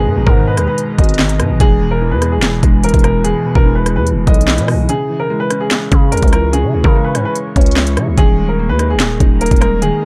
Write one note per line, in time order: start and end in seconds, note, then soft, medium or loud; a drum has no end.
0.00 1.62 G#2 loud
0.00 0.16 B2 medium
0.00 0.37 D#3 medium
0.00 0.57 G#3 medium
0.00 0.24 G#4 loud
0.00 8.14 G#4 medium
0.00 4.85 B4 medium
0.00 1.57 D#5 medium
0.00 1.57 A#5 medium
0.06 0.18 G#2 loud
0.16 0.26 G#1 loud
0.16 1.19 B2 medium
0.26 0.59 G#2 loud
0.26 0.45 A#4 medium
0.26 kick medium
0.37 1.18 D#3 medium
0.47 0.66 B4 medium
0.57 0.67 D#2 loud
0.57 0.97 G#3 medium
0.57 cross-stick medium
0.57 closed hi-hat medium
0.68 0.77 B4 medium
0.78 closed hi-hat medium
0.98 1.41 G#1 loud
0.98 1.60 G#3 medium
0.98 1.56 D#5 medium
0.98 kick loud
0.98 closed hi-hat medium
1.04 closed hi-hat medium
1.09 closed hi-hat medium
1.14 closed hi-hat medium
1.19 1.60 D#3 medium
1.19 snare loud
1.19 clap loud
1.29 closed hi-hat medium
1.40 1.51 G#2 loud
1.40 1.60 B2 medium
1.40 cross-stick loud
1.40 closed hi-hat medium
1.50 1.60 G#1 loud
1.60 2.13 E1 loud
1.60 2.63 E2 loud
1.60 8.14 E4 medium
1.60 1.89 G#4 loud
1.60 4.86 B5 medium
1.60 kick loud
1.60 closed hi-hat medium
1.81 2.84 B2 medium
1.91 2.09 A#4 medium
2.01 2.82 E3 medium
2.11 2.39 E2 loud
2.11 2.30 B4 medium
2.21 2.62 G#3 medium
2.21 cross-stick medium
2.21 closed hi-hat medium
2.32 2.80 G#4 medium
2.37 2.62 E1 loud
2.42 snare loud
2.42 clap medium
2.42 closed hi-hat medium
2.63 2.93 E1 loud
2.63 3.66 G#3 medium
2.63 kick loud
2.63 closed hi-hat medium
2.83 3.64 E3 medium
2.83 3.02 A#4 medium
2.83 closed hi-hat medium
2.89 closed hi-hat medium
2.94 3.33 E1 loud
2.94 kick loud
2.94 closed hi-hat medium
2.99 closed hi-hat soft
3.04 3.44 B2 medium
3.04 3.22 A#4 medium
3.04 cross-stick medium
3.04 closed hi-hat medium
3.24 4.27 E2 medium
3.24 3.53 G#4 loud
3.24 closed hi-hat medium
3.45 4.48 B2 medium
3.55 3.98 E1 loud
3.55 3.74 A#4 medium
3.55 kick medium
3.66 4.46 E3 medium
3.75 3.94 B4 medium
3.86 4.25 G#3 medium
3.86 cross-stick medium
3.86 closed hi-hat medium
3.96 4.13 E2 loud
3.96 4.05 B4 medium
4.07 closed hi-hat medium
4.12 4.26 E1 loud
4.27 4.60 B1 loud
4.27 4.89 G#3 medium
4.27 4.85 D#5 medium
4.27 kick loud
4.27 closed hi-hat soft
4.34 closed hi-hat medium
4.41 closed hi-hat medium
4.48 4.89 E3 medium
4.48 snare loud
4.48 clap medium
4.58 4.75 B2 loud
4.58 closed hi-hat medium
4.68 4.89 B2 medium
4.68 cross-stick loud
4.68 open hi-hat soft
4.74 4.88 B1 loud
4.89 5.92 C#3 medium
4.89 5.18 G#4 loud
4.89 8.14 C#5 medium
4.89 8.14 C#6 medium
4.89 closed hi-hat medium
5.10 6.12 E3 medium
5.20 5.38 A#4 medium
5.30 6.10 G#3 medium
5.40 5.58 B4 medium
5.50 5.90 C#4 medium
5.50 cross-stick medium
5.50 closed hi-hat medium
5.60 6.09 G#4 medium
5.71 snare loud
5.71 clap medium
5.71 closed hi-hat medium
5.92 6.14 C#3 loud
5.92 6.94 C#4 medium
5.92 kick loud
5.92 closed hi-hat medium
6.12 6.22 D#2 loud
6.12 6.94 G#3 medium
6.12 6.30 A#4 medium
6.12 closed hi-hat medium
6.17 closed hi-hat medium
6.22 6.65 C#2 loud
6.22 kick loud
6.22 closed hi-hat medium
6.28 closed hi-hat soft
6.33 6.72 E3 medium
6.33 6.51 A#4 medium
6.33 cross-stick loud
6.33 closed hi-hat medium
6.53 7.56 C#3 loud
6.53 6.82 G#4 loud
6.53 closed hi-hat medium
6.63 6.75 C#3 loud
6.74 6.84 C#2 loud
6.74 7.76 E3 medium
6.84 7.16 C#3 loud
6.84 7.03 A#4 medium
6.84 kick medium
6.95 7.74 G#3 medium
7.04 7.23 B4 medium
7.15 7.25 G#2 loud
7.15 7.54 C#4 medium
7.15 cross-stick medium
7.15 closed hi-hat medium
7.25 7.34 B4 medium
7.35 closed hi-hat medium
7.56 7.99 C#2 loud
7.56 8.18 C#4 medium
7.56 8.14 C#5 medium
7.56 kick loud
7.56 closed hi-hat medium
7.61 closed hi-hat medium
7.66 closed hi-hat medium
7.71 closed hi-hat medium
7.76 8.17 G#3 medium
7.76 snare loud
7.76 clap medium
7.87 closed hi-hat medium
7.97 8.09 C#3 loud
7.97 8.17 E3 medium
7.97 cross-stick loud
7.97 closed hi-hat medium
8.07 8.17 C#2 loud
8.17 8.70 D#1 loud
8.17 9.20 D#3 loud
8.17 10.05 G#4 medium
8.17 8.47 G#4 loud
8.17 10.05 A#4 medium
8.17 10.05 D#5 medium
8.17 10.05 A#5 medium
8.17 kick loud
8.17 closed hi-hat medium
8.38 9.41 G#3 medium
8.49 8.67 A#4 medium
8.59 9.39 A#3 medium
8.69 8.96 D#2 loud
8.69 8.88 B4 medium
8.79 9.19 D#4 medium
8.79 cross-stick medium
8.79 closed hi-hat medium
8.90 9.38 G#4 medium
8.95 9.19 D#1 loud
9.00 snare loud
9.00 clap medium
9.00 closed hi-hat medium
9.20 9.50 D#1 loud
9.20 10.05 D#4 medium
9.20 kick loud
9.20 closed hi-hat medium
9.41 10.05 A#3 medium
9.41 9.59 A#4 medium
9.41 closed hi-hat medium
9.46 closed hi-hat medium
9.51 9.91 D#1 loud
9.51 kick loud
9.51 closed hi-hat medium
9.56 closed hi-hat soft
9.61 10.01 G#3 medium
9.61 9.79 A#4 medium
9.61 cross-stick loud
9.61 closed hi-hat medium
9.82 10.05 D#3 loud
9.82 10.05 G#4 loud
9.82 closed hi-hat medium